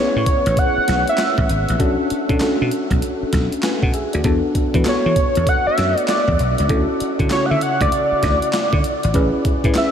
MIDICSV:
0, 0, Header, 1, 6, 480
1, 0, Start_track
1, 0, Key_signature, 3, "major"
1, 0, Tempo, 612245
1, 1407, Time_signature, 4, 2, 24, 8
1, 7773, End_track
2, 0, Start_track
2, 0, Title_t, "Analog synth lead"
2, 0, Program_c, 0, 81
2, 0, Note_on_c, 0, 73, 94
2, 459, Note_on_c, 0, 78, 119
2, 471, Note_off_c, 0, 73, 0
2, 845, Note_off_c, 0, 78, 0
2, 856, Note_on_c, 0, 76, 86
2, 1154, Note_off_c, 0, 76, 0
2, 3826, Note_on_c, 0, 73, 96
2, 4301, Note_on_c, 0, 78, 122
2, 4313, Note_off_c, 0, 73, 0
2, 4440, Note_off_c, 0, 78, 0
2, 4444, Note_on_c, 0, 76, 94
2, 4747, Note_off_c, 0, 76, 0
2, 4776, Note_on_c, 0, 74, 76
2, 5136, Note_off_c, 0, 74, 0
2, 5737, Note_on_c, 0, 73, 94
2, 5847, Note_on_c, 0, 78, 68
2, 5859, Note_off_c, 0, 73, 0
2, 5884, Note_on_c, 0, 76, 101
2, 5895, Note_off_c, 0, 78, 0
2, 5977, Note_on_c, 0, 78, 104
2, 5989, Note_off_c, 0, 76, 0
2, 6123, Note_off_c, 0, 78, 0
2, 6127, Note_on_c, 0, 74, 88
2, 6900, Note_off_c, 0, 74, 0
2, 7663, Note_on_c, 0, 76, 95
2, 7773, Note_off_c, 0, 76, 0
2, 7773, End_track
3, 0, Start_track
3, 0, Title_t, "FM electric piano"
3, 0, Program_c, 1, 5
3, 0, Control_c, 1, 64, 127
3, 0, Note_on_c, 1, 59, 73
3, 0, Note_on_c, 1, 61, 69
3, 0, Note_on_c, 1, 64, 61
3, 0, Note_on_c, 1, 68, 77
3, 0, Note_on_c, 1, 71, 82
3, 865, Note_off_c, 1, 59, 0
3, 868, Note_off_c, 1, 61, 0
3, 869, Note_off_c, 1, 64, 0
3, 870, Note_off_c, 1, 71, 0
3, 1405, Note_on_c, 1, 61, 87
3, 1406, Note_on_c, 1, 62, 85
3, 1409, Note_on_c, 1, 66, 79
3, 1412, Note_on_c, 1, 69, 105
3, 1418, Control_c, 1, 64, 0
3, 1422, Note_off_c, 1, 68, 0
3, 1570, Control_c, 1, 64, 127
3, 1758, Note_off_c, 1, 61, 0
3, 1759, Note_off_c, 1, 62, 0
3, 1760, Note_off_c, 1, 66, 0
3, 1762, Note_off_c, 1, 69, 0
3, 1794, Note_on_c, 1, 61, 89
3, 1796, Note_on_c, 1, 62, 78
3, 1801, Note_on_c, 1, 66, 75
3, 1802, Note_on_c, 1, 69, 90
3, 1874, Note_off_c, 1, 61, 0
3, 1878, Note_off_c, 1, 62, 0
3, 1880, Note_off_c, 1, 66, 0
3, 1881, Note_off_c, 1, 69, 0
3, 1884, Note_on_c, 1, 61, 84
3, 1888, Note_on_c, 1, 62, 74
3, 1892, Note_on_c, 1, 66, 86
3, 1894, Note_on_c, 1, 69, 100
3, 2784, Note_off_c, 1, 61, 0
3, 2786, Note_off_c, 1, 62, 0
3, 2788, Note_off_c, 1, 66, 0
3, 2789, Note_off_c, 1, 69, 0
3, 2849, Note_on_c, 1, 80, 66
3, 2853, Note_on_c, 1, 71, 51
3, 2992, Note_off_c, 1, 80, 0
3, 2995, Note_off_c, 1, 71, 0
3, 3000, Note_on_c, 1, 78, 61
3, 3004, Note_on_c, 1, 69, 58
3, 3083, Note_off_c, 1, 78, 0
3, 3086, Note_off_c, 1, 69, 0
3, 3089, Note_on_c, 1, 76, 74
3, 3093, Note_on_c, 1, 68, 63
3, 3232, Note_off_c, 1, 76, 0
3, 3235, Note_off_c, 1, 68, 0
3, 3239, Note_on_c, 1, 74, 60
3, 3245, Note_on_c, 1, 66, 53
3, 3320, Note_off_c, 1, 66, 0
3, 3323, Note_on_c, 1, 59, 87
3, 3325, Note_on_c, 1, 62, 80
3, 3330, Note_on_c, 1, 66, 81
3, 3331, Note_on_c, 1, 69, 99
3, 3337, Control_c, 1, 64, 0
3, 3455, Control_c, 1, 64, 127
3, 3467, Note_off_c, 1, 74, 0
3, 3677, Note_off_c, 1, 59, 0
3, 3678, Note_off_c, 1, 62, 0
3, 3681, Note_off_c, 1, 66, 0
3, 3681, Note_off_c, 1, 69, 0
3, 3715, Note_on_c, 1, 59, 69
3, 3717, Note_on_c, 1, 62, 67
3, 3721, Note_on_c, 1, 66, 67
3, 3725, Note_on_c, 1, 71, 70
3, 3793, Note_off_c, 1, 59, 0
3, 3795, Note_off_c, 1, 62, 0
3, 3798, Note_off_c, 1, 66, 0
3, 3802, Note_on_c, 1, 59, 70
3, 3803, Note_off_c, 1, 71, 0
3, 3804, Note_on_c, 1, 62, 63
3, 3808, Note_on_c, 1, 66, 66
3, 3811, Note_on_c, 1, 69, 82
3, 4703, Note_off_c, 1, 59, 0
3, 4704, Note_off_c, 1, 62, 0
3, 4706, Note_off_c, 1, 66, 0
3, 4708, Note_off_c, 1, 69, 0
3, 5243, Note_on_c, 1, 61, 88
3, 5246, Note_on_c, 1, 64, 74
3, 5247, Note_on_c, 1, 66, 77
3, 5251, Note_on_c, 1, 69, 100
3, 5257, Control_c, 1, 64, 0
3, 5380, Control_c, 1, 64, 127
3, 5597, Note_off_c, 1, 61, 0
3, 5599, Note_off_c, 1, 64, 0
3, 5599, Note_off_c, 1, 66, 0
3, 5601, Note_off_c, 1, 69, 0
3, 5636, Note_on_c, 1, 61, 68
3, 5639, Note_on_c, 1, 64, 58
3, 5642, Note_on_c, 1, 66, 62
3, 5645, Note_on_c, 1, 69, 75
3, 5716, Note_off_c, 1, 64, 0
3, 5718, Note_off_c, 1, 61, 0
3, 5719, Note_off_c, 1, 66, 0
3, 5723, Note_off_c, 1, 69, 0
3, 5723, Note_on_c, 1, 49, 72
3, 5725, Note_on_c, 1, 64, 65
3, 5729, Note_on_c, 1, 66, 68
3, 5733, Note_on_c, 1, 69, 78
3, 6624, Note_off_c, 1, 49, 0
3, 6625, Note_off_c, 1, 64, 0
3, 6626, Note_off_c, 1, 66, 0
3, 6628, Note_off_c, 1, 69, 0
3, 7163, Note_on_c, 1, 61, 89
3, 7166, Note_on_c, 1, 64, 81
3, 7169, Note_on_c, 1, 68, 83
3, 7173, Note_on_c, 1, 71, 98
3, 7176, Control_c, 1, 64, 0
3, 7304, Control_c, 1, 64, 127
3, 7517, Note_off_c, 1, 61, 0
3, 7519, Note_off_c, 1, 64, 0
3, 7521, Note_off_c, 1, 68, 0
3, 7522, Note_off_c, 1, 71, 0
3, 7555, Note_on_c, 1, 61, 67
3, 7559, Note_on_c, 1, 64, 61
3, 7561, Note_on_c, 1, 68, 68
3, 7565, Note_on_c, 1, 71, 77
3, 7635, Note_off_c, 1, 61, 0
3, 7637, Note_off_c, 1, 64, 0
3, 7641, Note_off_c, 1, 68, 0
3, 7642, Note_off_c, 1, 71, 0
3, 7645, Note_on_c, 1, 61, 75
3, 7647, Note_on_c, 1, 64, 64
3, 7652, Note_on_c, 1, 68, 62
3, 7653, Note_on_c, 1, 71, 79
3, 7773, Note_off_c, 1, 61, 0
3, 7773, Note_off_c, 1, 64, 0
3, 7773, Note_off_c, 1, 68, 0
3, 7773, Note_off_c, 1, 71, 0
3, 7773, End_track
4, 0, Start_track
4, 0, Title_t, "Slap bass"
4, 0, Program_c, 2, 36
4, 125, Note_on_c, 2, 45, 86
4, 191, Note_off_c, 2, 45, 0
4, 363, Note_on_c, 2, 33, 92
4, 429, Note_off_c, 2, 33, 0
4, 693, Note_on_c, 2, 35, 77
4, 808, Note_off_c, 2, 35, 0
4, 1082, Note_on_c, 2, 33, 88
4, 1148, Note_off_c, 2, 33, 0
4, 1175, Note_on_c, 2, 32, 86
4, 1288, Note_off_c, 2, 32, 0
4, 1327, Note_on_c, 2, 33, 85
4, 1392, Note_off_c, 2, 33, 0
4, 1411, Note_on_c, 2, 35, 98
4, 1526, Note_off_c, 2, 35, 0
4, 1801, Note_on_c, 2, 47, 90
4, 1868, Note_off_c, 2, 47, 0
4, 2050, Note_on_c, 2, 47, 91
4, 2113, Note_off_c, 2, 47, 0
4, 2281, Note_on_c, 2, 35, 80
4, 2348, Note_off_c, 2, 35, 0
4, 2613, Note_on_c, 2, 35, 84
4, 2727, Note_off_c, 2, 35, 0
4, 3001, Note_on_c, 2, 47, 95
4, 3068, Note_off_c, 2, 47, 0
4, 3248, Note_on_c, 2, 38, 75
4, 3313, Note_off_c, 2, 38, 0
4, 3330, Note_on_c, 2, 40, 100
4, 3446, Note_off_c, 2, 40, 0
4, 3721, Note_on_c, 2, 52, 90
4, 3788, Note_off_c, 2, 52, 0
4, 3965, Note_on_c, 2, 52, 90
4, 4031, Note_off_c, 2, 52, 0
4, 4208, Note_on_c, 2, 40, 86
4, 4273, Note_off_c, 2, 40, 0
4, 4534, Note_on_c, 2, 42, 77
4, 4648, Note_off_c, 2, 42, 0
4, 4923, Note_on_c, 2, 40, 75
4, 4989, Note_off_c, 2, 40, 0
4, 5015, Note_on_c, 2, 35, 81
4, 5129, Note_off_c, 2, 35, 0
4, 5169, Note_on_c, 2, 37, 73
4, 5233, Note_off_c, 2, 37, 0
4, 5250, Note_on_c, 2, 38, 98
4, 5366, Note_off_c, 2, 38, 0
4, 5642, Note_on_c, 2, 50, 90
4, 5709, Note_off_c, 2, 50, 0
4, 5887, Note_on_c, 2, 50, 84
4, 5951, Note_off_c, 2, 50, 0
4, 6124, Note_on_c, 2, 38, 88
4, 6190, Note_off_c, 2, 38, 0
4, 6454, Note_on_c, 2, 38, 86
4, 6568, Note_off_c, 2, 38, 0
4, 6844, Note_on_c, 2, 50, 89
4, 6910, Note_off_c, 2, 50, 0
4, 7089, Note_on_c, 2, 32, 82
4, 7153, Note_off_c, 2, 32, 0
4, 7172, Note_on_c, 2, 33, 100
4, 7287, Note_off_c, 2, 33, 0
4, 7560, Note_on_c, 2, 45, 95
4, 7628, Note_off_c, 2, 45, 0
4, 7773, End_track
5, 0, Start_track
5, 0, Title_t, "Muted slap bass strokes"
5, 608, Note_on_c, 9, 29, 50
5, 686, Note_off_c, 9, 29, 0
5, 1655, Note_on_c, 9, 29, 46
5, 1733, Note_off_c, 9, 29, 0
5, 1894, Note_on_c, 9, 29, 49
5, 1972, Note_off_c, 9, 29, 0
5, 2529, Note_on_c, 9, 29, 48
5, 2607, Note_off_c, 9, 29, 0
5, 3568, Note_on_c, 9, 29, 46
5, 3647, Note_off_c, 9, 29, 0
5, 3815, Note_on_c, 9, 29, 47
5, 3894, Note_off_c, 9, 29, 0
5, 4446, Note_on_c, 9, 29, 50
5, 4524, Note_off_c, 9, 29, 0
5, 5496, Note_on_c, 9, 29, 47
5, 5574, Note_off_c, 9, 29, 0
5, 5738, Note_on_c, 9, 29, 51
5, 5816, Note_off_c, 9, 29, 0
5, 6366, Note_on_c, 9, 29, 50
5, 6444, Note_off_c, 9, 29, 0
5, 7410, Note_on_c, 9, 29, 45
5, 7488, Note_off_c, 9, 29, 0
5, 7658, Note_on_c, 9, 29, 47
5, 7737, Note_off_c, 9, 29, 0
5, 7773, End_track
6, 0, Start_track
6, 0, Title_t, "Drums"
6, 207, Note_on_c, 9, 36, 97
6, 207, Note_on_c, 9, 42, 70
6, 285, Note_off_c, 9, 42, 0
6, 286, Note_off_c, 9, 36, 0
6, 362, Note_on_c, 9, 42, 57
6, 440, Note_off_c, 9, 42, 0
6, 447, Note_on_c, 9, 36, 90
6, 447, Note_on_c, 9, 42, 75
6, 525, Note_off_c, 9, 36, 0
6, 525, Note_off_c, 9, 42, 0
6, 689, Note_on_c, 9, 42, 76
6, 690, Note_on_c, 9, 38, 64
6, 767, Note_off_c, 9, 42, 0
6, 768, Note_off_c, 9, 38, 0
6, 843, Note_on_c, 9, 42, 47
6, 921, Note_off_c, 9, 42, 0
6, 924, Note_on_c, 9, 39, 84
6, 927, Note_on_c, 9, 38, 117
6, 928, Note_on_c, 9, 42, 71
6, 1002, Note_off_c, 9, 39, 0
6, 1005, Note_off_c, 9, 38, 0
6, 1006, Note_off_c, 9, 42, 0
6, 1081, Note_on_c, 9, 36, 85
6, 1159, Note_off_c, 9, 36, 0
6, 1172, Note_on_c, 9, 42, 71
6, 1250, Note_off_c, 9, 42, 0
6, 1321, Note_on_c, 9, 42, 50
6, 1400, Note_off_c, 9, 42, 0
6, 1409, Note_on_c, 9, 36, 113
6, 1410, Note_on_c, 9, 42, 72
6, 1487, Note_off_c, 9, 36, 0
6, 1488, Note_off_c, 9, 42, 0
6, 1649, Note_on_c, 9, 42, 70
6, 1728, Note_off_c, 9, 42, 0
6, 1799, Note_on_c, 9, 36, 91
6, 1801, Note_on_c, 9, 42, 45
6, 1877, Note_off_c, 9, 36, 0
6, 1880, Note_off_c, 9, 42, 0
6, 1885, Note_on_c, 9, 39, 85
6, 1888, Note_on_c, 9, 38, 100
6, 1890, Note_on_c, 9, 42, 68
6, 1963, Note_off_c, 9, 39, 0
6, 1966, Note_off_c, 9, 38, 0
6, 1968, Note_off_c, 9, 42, 0
6, 2128, Note_on_c, 9, 42, 71
6, 2206, Note_off_c, 9, 42, 0
6, 2278, Note_on_c, 9, 36, 96
6, 2281, Note_on_c, 9, 42, 60
6, 2356, Note_off_c, 9, 36, 0
6, 2359, Note_off_c, 9, 42, 0
6, 2370, Note_on_c, 9, 42, 76
6, 2448, Note_off_c, 9, 42, 0
6, 2608, Note_on_c, 9, 42, 82
6, 2609, Note_on_c, 9, 36, 88
6, 2610, Note_on_c, 9, 38, 59
6, 2686, Note_off_c, 9, 42, 0
6, 2687, Note_off_c, 9, 36, 0
6, 2688, Note_off_c, 9, 38, 0
6, 2763, Note_on_c, 9, 42, 52
6, 2841, Note_off_c, 9, 42, 0
6, 2844, Note_on_c, 9, 39, 86
6, 2847, Note_on_c, 9, 38, 114
6, 2849, Note_on_c, 9, 42, 71
6, 2923, Note_off_c, 9, 39, 0
6, 2926, Note_off_c, 9, 38, 0
6, 2927, Note_off_c, 9, 42, 0
6, 2999, Note_on_c, 9, 36, 95
6, 3077, Note_off_c, 9, 36, 0
6, 3086, Note_on_c, 9, 42, 75
6, 3165, Note_off_c, 9, 42, 0
6, 3239, Note_on_c, 9, 42, 52
6, 3317, Note_off_c, 9, 42, 0
6, 3325, Note_on_c, 9, 42, 67
6, 3327, Note_on_c, 9, 36, 117
6, 3404, Note_off_c, 9, 42, 0
6, 3406, Note_off_c, 9, 36, 0
6, 3567, Note_on_c, 9, 36, 89
6, 3567, Note_on_c, 9, 42, 79
6, 3645, Note_off_c, 9, 36, 0
6, 3646, Note_off_c, 9, 42, 0
6, 3718, Note_on_c, 9, 36, 91
6, 3720, Note_on_c, 9, 42, 45
6, 3796, Note_off_c, 9, 36, 0
6, 3799, Note_off_c, 9, 42, 0
6, 3804, Note_on_c, 9, 39, 85
6, 3807, Note_on_c, 9, 38, 106
6, 3809, Note_on_c, 9, 42, 72
6, 3882, Note_off_c, 9, 39, 0
6, 3885, Note_off_c, 9, 38, 0
6, 3887, Note_off_c, 9, 42, 0
6, 4046, Note_on_c, 9, 36, 90
6, 4046, Note_on_c, 9, 42, 69
6, 4124, Note_off_c, 9, 42, 0
6, 4125, Note_off_c, 9, 36, 0
6, 4198, Note_on_c, 9, 42, 58
6, 4276, Note_off_c, 9, 42, 0
6, 4286, Note_on_c, 9, 36, 89
6, 4287, Note_on_c, 9, 42, 80
6, 4365, Note_off_c, 9, 36, 0
6, 4366, Note_off_c, 9, 42, 0
6, 4529, Note_on_c, 9, 42, 73
6, 4530, Note_on_c, 9, 38, 60
6, 4607, Note_off_c, 9, 42, 0
6, 4609, Note_off_c, 9, 38, 0
6, 4685, Note_on_c, 9, 42, 49
6, 4763, Note_off_c, 9, 42, 0
6, 4767, Note_on_c, 9, 39, 87
6, 4770, Note_on_c, 9, 38, 111
6, 4771, Note_on_c, 9, 42, 75
6, 4845, Note_off_c, 9, 39, 0
6, 4848, Note_off_c, 9, 38, 0
6, 4850, Note_off_c, 9, 42, 0
6, 4921, Note_on_c, 9, 36, 89
6, 5000, Note_off_c, 9, 36, 0
6, 5012, Note_on_c, 9, 42, 74
6, 5090, Note_off_c, 9, 42, 0
6, 5161, Note_on_c, 9, 42, 52
6, 5240, Note_off_c, 9, 42, 0
6, 5248, Note_on_c, 9, 42, 72
6, 5249, Note_on_c, 9, 36, 121
6, 5327, Note_off_c, 9, 36, 0
6, 5327, Note_off_c, 9, 42, 0
6, 5491, Note_on_c, 9, 42, 75
6, 5570, Note_off_c, 9, 42, 0
6, 5640, Note_on_c, 9, 36, 82
6, 5642, Note_on_c, 9, 42, 45
6, 5718, Note_off_c, 9, 36, 0
6, 5720, Note_off_c, 9, 42, 0
6, 5726, Note_on_c, 9, 39, 84
6, 5729, Note_on_c, 9, 38, 100
6, 5731, Note_on_c, 9, 42, 70
6, 5804, Note_off_c, 9, 39, 0
6, 5807, Note_off_c, 9, 38, 0
6, 5809, Note_off_c, 9, 42, 0
6, 5969, Note_on_c, 9, 42, 70
6, 6048, Note_off_c, 9, 42, 0
6, 6120, Note_on_c, 9, 36, 92
6, 6124, Note_on_c, 9, 42, 56
6, 6199, Note_off_c, 9, 36, 0
6, 6203, Note_off_c, 9, 42, 0
6, 6210, Note_on_c, 9, 42, 77
6, 6289, Note_off_c, 9, 42, 0
6, 6450, Note_on_c, 9, 42, 78
6, 6451, Note_on_c, 9, 36, 82
6, 6451, Note_on_c, 9, 38, 61
6, 6528, Note_off_c, 9, 42, 0
6, 6529, Note_off_c, 9, 36, 0
6, 6530, Note_off_c, 9, 38, 0
6, 6604, Note_on_c, 9, 42, 51
6, 6682, Note_off_c, 9, 42, 0
6, 6688, Note_on_c, 9, 39, 91
6, 6691, Note_on_c, 9, 38, 114
6, 6693, Note_on_c, 9, 42, 76
6, 6767, Note_off_c, 9, 39, 0
6, 6770, Note_off_c, 9, 38, 0
6, 6771, Note_off_c, 9, 42, 0
6, 6842, Note_on_c, 9, 36, 89
6, 6920, Note_off_c, 9, 36, 0
6, 6931, Note_on_c, 9, 42, 77
6, 7010, Note_off_c, 9, 42, 0
6, 7082, Note_on_c, 9, 42, 54
6, 7161, Note_off_c, 9, 42, 0
6, 7166, Note_on_c, 9, 42, 72
6, 7169, Note_on_c, 9, 36, 113
6, 7245, Note_off_c, 9, 42, 0
6, 7247, Note_off_c, 9, 36, 0
6, 7408, Note_on_c, 9, 36, 85
6, 7408, Note_on_c, 9, 42, 67
6, 7486, Note_off_c, 9, 42, 0
6, 7487, Note_off_c, 9, 36, 0
6, 7558, Note_on_c, 9, 36, 91
6, 7559, Note_on_c, 9, 42, 44
6, 7637, Note_off_c, 9, 36, 0
6, 7637, Note_off_c, 9, 42, 0
6, 7642, Note_on_c, 9, 39, 82
6, 7645, Note_on_c, 9, 38, 112
6, 7647, Note_on_c, 9, 42, 65
6, 7720, Note_off_c, 9, 39, 0
6, 7723, Note_off_c, 9, 38, 0
6, 7725, Note_off_c, 9, 42, 0
6, 7773, End_track
0, 0, End_of_file